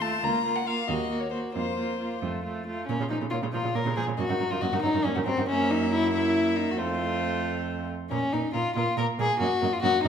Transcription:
Already playing: cello D#2
0.01 viola A3, violin F4 A5
0.21 cello C#2, viola A#3, violin F4 A#5
0.45 viola A#3, violin F4
0.56 violin F#5
0.66 viola A#3, violin F4 F5
0.88 cello D#2, viola A#3, violin F#4 D#5
1.10 viola A#3, violin F#4
1.20 violin C#5
1.30 viola A#3, violin F#4 C5
1.53 cello F2, viola A#3, violin F4 C5
1.77 viola A#3, violin F4
1.99 viola A#3, violin F4
2.22 cello F2, viola A3, violin F4
2.44 viola A3, violin F4
2.67 viola A3, violin F4
2.87 cello A#2, viola A#3, violin C#4 C#5
3.00 cello A#2, viola C#3, violin F4
3.10 cello A#2, viola F3, violin D#4 A#4
3.21 cello A#2, viola C#3, violin F4
3.30 cello A#2, viola A#3, violin F4 C#5
3.42 cello A#2, viola C#3, violin F4
3.53 cello A#2, viola F3, violin F4 A#4
3.64 cello A#2, viola C#3, violin F4
3.74 cello A#2, viola A#3, violin A#4 C#5
3.85 cello A#2, viola C#3, violin F4
3.97 cello A#2, viola F3, violin G#4 A#4
4.06 cello A#2, viola C#3, violin F4
4.17 cello F#2, viola A#3, violin F#4 D#5
4.29 cello F#2, viola D#3, violin F#4
4.40 cello F#2, viola F#3, violin A#4
4.51 cello F#2, viola D#3, violin F4 F#4
4.61 cello F#2, viola A#3, violin F#4 D#5
4.72 cello F#2, viola D#3, violin F#4
4.82 cello F#2, viola F#3, violin D#4 A#4
4.93 cello F#2, viola D#3, violin F#4
5.03 cello F#2, viola A#3, violin C#4 D#5
5.15 cello F#2, viola D#3, violin F#4
5.26 cello F#2, viola F#3, violin C4 A#4
5.37 cello F#2, viola D#3, violin F#4
5.47 cello F#2, viola A#3, violin C#4 E5
5.71 violin D#4
5.92 violin E4
6.12 viola A#3, violin E4 E5
6.56 violin D#4
6.71 violin F#4
6.78 cello F2, viola A3, violin F4 C5
8.10 cello A#2, viola A#3, violin C#4 A#4
8.33 cello A#2, viola A#3, violin D#4 A#4
8.53 cello A#2, viola A#3, violin F4 A#4
8.76 cello A#2, viola A#3, violin F4 A#4
8.97 cello A#2, viola A#3, violin A#4
9.19 cello A#2, viola A#3, violin G#4 A#4
9.39 cello F#2, viola A#3, violin F#4 D#5
9.61 cello F#2, viola A#3, violin D#5
9.73 violin F4
9.82 cello F#2, viola A#3, violin F#4 D#5
10.04 cello F#2, viola A#3, violin D#4

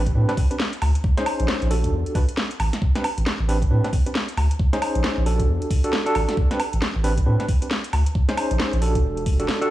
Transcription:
Already playing: sub bass A1
0.06 kick, closed hi-hat
0.15 sub bass A2, tine electric piano C4 D4 G4 B4
0.29 tine electric piano C4 D4 G4 B4, snare, closed hi-hat
0.37 kick, open hi-hat
0.51 tine electric piano C4 D4 G4 B4, closed hi-hat
0.60 snare
0.73 closed hi-hat
0.82 sub bass D2, open hi-hat, high woodblock
0.95 closed hi-hat
1.04 kick
1.17 tine electric piano C#4 D#4 G#4 C5, snare, closed hi-hat
1.26 open hi-hat, high woodblock
1.40 sub bass A#1, closed hi-hat
1.48 snare
1.62 sub bass A#1, closed hi-hat
1.71 tine electric piano D4 F#4 G4 A4, open hi-hat
1.84 kick, closed hi-hat
1.93 sub bass E2
2.06 closed hi-hat
2.15 tine electric piano D4 F#4 G4 B4, kick, open hi-hat
2.29 closed hi-hat
2.37 snare
2.51 closed hi-hat
2.59 sub bass A1, open hi-hat, high woodblock
2.73 snare, closed hi-hat
2.82 kick
2.95 tine electric piano C4 D4 G4 B4, snare, closed hi-hat
3.04 open hi-hat, high woodblock
3.17 sub bass A1, closed hi-hat
3.26 snare
3.40 sub bass A1
3.48 tine electric piano C4 D4 G4 B4, open hi-hat
3.62 kick, closed hi-hat
3.71 sub bass A2, tine electric piano C4 D4 G4 B4
3.84 tine electric piano C4 D4 G4 B4, snare, closed hi-hat
3.93 kick, open hi-hat
4.06 tine electric piano C4 D4 G4 B4, closed hi-hat
4.15 snare
4.29 closed hi-hat
4.37 sub bass D2, open hi-hat, high woodblock
4.51 closed hi-hat
4.59 kick
4.73 tine electric piano C#4 D#4 G#4 C5, snare, closed hi-hat
4.82 open hi-hat, high woodblock
4.95 sub bass A#1, closed hi-hat
5.04 snare
5.17 sub bass A#1
5.26 tine electric piano D4 F#4 G4 A4, open hi-hat
5.40 kick, closed hi-hat
5.48 sub bass E2
5.62 closed hi-hat
5.71 kick, open hi-hat
5.84 tine electric piano D4 F#4 G4 A4, closed hi-hat
5.93 snare
6.06 tine electric piano D4 F#4 G4 A4, closed hi-hat
6.15 sub bass A1, open hi-hat, high woodblock
6.29 snare, closed hi-hat
6.37 kick
6.51 tine electric piano C4 D4 G4 B4, snare, closed hi-hat
6.60 open hi-hat, high woodblock
6.73 sub bass A1, closed hi-hat
6.82 snare
6.95 sub bass A1
7.04 tine electric piano C4 D4 G4 B4, open hi-hat
7.17 kick, closed hi-hat
7.26 sub bass A2, tine electric piano C4 D4 G4 B4
7.40 tine electric piano C4 D4 G4 B4, snare, closed hi-hat
7.48 kick, open hi-hat
7.62 tine electric piano C4 D4 G4 B4, closed hi-hat
7.71 snare
7.84 closed hi-hat
7.93 sub bass D2, open hi-hat, high woodblock
8.06 closed hi-hat
8.15 kick
8.29 tine electric piano C#4 D#4 G#4 C5, snare, closed hi-hat
8.37 open hi-hat, high woodblock
8.51 sub bass A#1, closed hi-hat
8.60 snare
8.73 sub bass A#1, closed hi-hat
8.82 tine electric piano D4 F#4 G4 A4, open hi-hat
8.95 kick, closed hi-hat
9.04 sub bass E1
9.17 closed hi-hat
9.26 kick, open hi-hat
9.40 tine electric piano D4 F#4 G4 A4, closed hi-hat
9.49 snare, open hi-hat
9.62 tine electric piano D4 F#4 G4 A4, closed hi-hat

